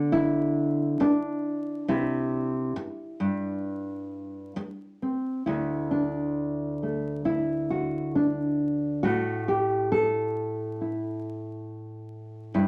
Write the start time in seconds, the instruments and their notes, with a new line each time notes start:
Already playing: nylon-string guitar D3 B3 D4
0.12 nylon-string guitar E4
1.00 nylon-string guitar D4, muted nylon-string guitar stroke
1.88 nylon-string guitar C3 E4
2.76 muted nylon-string guitar stroke
3.20 nylon-string guitar G2
4.56 muted nylon-string guitar stroke
5.02 nylon-string guitar C4
5.46 nylon-string guitar D2 D3 E4
5.91 nylon-string guitar D4
6.83 nylon-string guitar A3
7.25 nylon-string guitar E4
7.70 nylon-string guitar F#4
8.15 nylon-string guitar D4
9.03 nylon-string guitar A2 F#4
9.48 nylon-string guitar G4
9.92 nylon-string guitar A4
10.81 nylon-string guitar E4
12.54 nylon-string guitar G2 E4